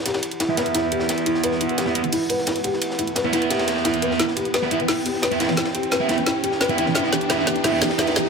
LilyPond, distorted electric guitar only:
\new Staff \with { instrumentName = "Distorted electric guitar" } { \time 4/4 \key e \minor \tempo 4 = 174 r4 r16 <b e' e''>16 <b e' e''>2~ <b e' e''>8~ | <b e' e''>4~ <b e' e''>16 <b e' e''>16 <b e' e''>16 r2 r16 | r4 r16 <b e' e''>16 <b e' e''>2~ <b e' e''>8 | r4 r16 <b e' e''>16 <b e' e''>16 r4. <b e' e''>16 <b e' e''>16 r16 |
r4 r16 <b e' e''>16 <b e' e''>16 r4. <b e' e''>16 <b e' e''>16 r16 | <b e' e''>16 <b e' e''>16 r8 <b e' e''>16 <b e' e''>16 r8 <b e' e''>16 <b e' e''>16 r8 <b e' e''>16 <b e' e''>16 r8 | }